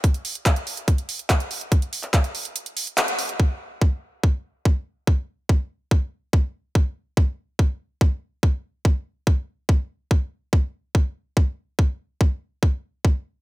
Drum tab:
HH |xxoxxxoxxxoxxxox|xxoxxxoxxxoxxxox|----------------|----------------|
CP |----x-------x---|---xx-------x---|----------------|----------------|
BD |o---o---o---o---|o---o-----------|o---o---o---o---|o---o---o---o---|

HH |----------------|----------------|----------------|----------------|
CP |----------------|----------------|----------------|----------------|
BD |o---o---o---o---|o---o---o---o---|o---o---o---o---|o---o---o---o---|